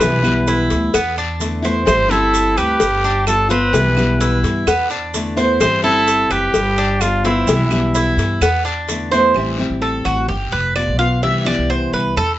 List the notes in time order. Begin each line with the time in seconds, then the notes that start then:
Already playing: B4
0.00 C2 C3 E3 G3 B3 E4, cowbell, long guiro, maracas
0.12 B1
0.23 E3 G3 B3 E4, claves, maracas
0.47 E4, cowbell, short guiro, maracas
0.70 D2, cowbell, short guiro, maracas
0.93 E2 B3, muted nylon-string guitar stroke, cowbell, long guiro, claves, maracas
1.18 D4, maracas
1.39 D3 A3 B3 E4, cowbell, short guiro, maracas
1.62 A3 B3 E4 C5, short guiro, maracas
1.85 A1 E3 G3 C4 E4 C5, cowbell, long guiro, claves, maracas
1.99 G1
2.09 G3 C4 E4 A4, maracas
2.33 cowbell, short guiro, maracas
2.57 D2 G4 B4, short guiro, claves, maracas
2.80 G1, muted nylon-string guitar stroke, cowbell, long guiro, maracas
3.04 D4, maracas
3.26 G3 B3 F4 A4, cowbell, short guiro, claves, maracas
3.49 B3 C4 F4 B4, cowbell, short guiro, maracas
3.73 C2 C3 E3 G3 B3 E4, cowbell, long guiro, maracas
3.85 B1
3.97 E3 G3 B3 E4, claves, maracas
4.20 E4, cowbell, short guiro, maracas
4.43 G2, cowbell, short guiro, maracas
4.67 E2 B3, muted nylon-string guitar stroke, cowbell, long guiro, claves, maracas
4.90 D4, maracas
5.14 D3 A3 B3 E4, cowbell, short guiro, maracas
5.37 A3 B3 E4 C5, short guiro, maracas
5.60 A1 E3 G3 C4 E4 C5, cowbell, long guiro, claves, maracas
5.72 G1
5.84 G3 C4 E4 A4, maracas
6.07 cowbell, short guiro, maracas
6.30 F#1 G4 B4, short guiro, claves, maracas
6.53 G1, muted nylon-string guitar stroke, cowbell, long guiro, maracas
6.78 D4, maracas
7.00 G3 B3 F4, cowbell, short guiro, claves, maracas
7.24 B3 C4 E4 F4, cowbell, short guiro, maracas
7.47 C2 C3 E3 G3 B3 E4, cowbell, long guiro, maracas
7.59 B1
7.71 E3 G3 B3 E4, claves, maracas
7.95 E4, cowbell, short guiro, maracas
8.17 G2, cowbell, short guiro, maracas
8.41 E2 B3, muted nylon-string guitar stroke, cowbell, long guiro, claves, maracas
8.65 D4, maracas
8.88 D3 A3 B3 E4, cowbell, short guiro, maracas
9.12 A3 B3 E4 C5, short guiro, maracas
9.34 A1 E3 G3 C4 E4, long guiro, claves
9.58 G3 C4 E4
9.70 A1
9.81 A4, short guiro
10.05 A1 F#4, short guiro, claves
10.28 G1 G4, muted nylon-string guitar stroke, long guiro
10.52 F1 B4
10.76 G3 B3 F4 D5, short guiro, claves
10.88 B1
10.99 B3 F4 F5, short guiro
11.22 C2 C3 E3 G3 B3 E4 E5, long guiro
11.45 E3 G3 B3 E4 D5, claves
11.58 C2
11.70 C5, short guiro
11.93 C2 B4, short guiro
12.16 E2 A4, muted nylon-string guitar stroke, long guiro, claves